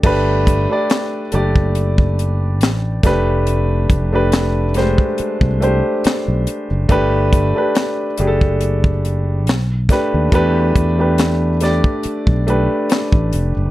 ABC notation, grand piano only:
X:1
M:4/4
L:1/16
Q:"Swing 16ths" 1/4=70
K:G
V:1 name="Grand piano"
[A,DGB]2 z [A,DGd]2 z [A,DGd]6 z2 [A,DGB]2- | [A,DGB]2 z [A,DGB]2 z [_A,=A,DGc]3 z [A,DGc]4- [A,DGc] z | [A,DGB]2 z [A,DGB]2 z [A,DG_A=A]6 z2 [A,DGB]2 | [A,DGB]2 z [A,DGB]2 z [A,DGd]3 z [A,DGB]4- [A,DGB] z |]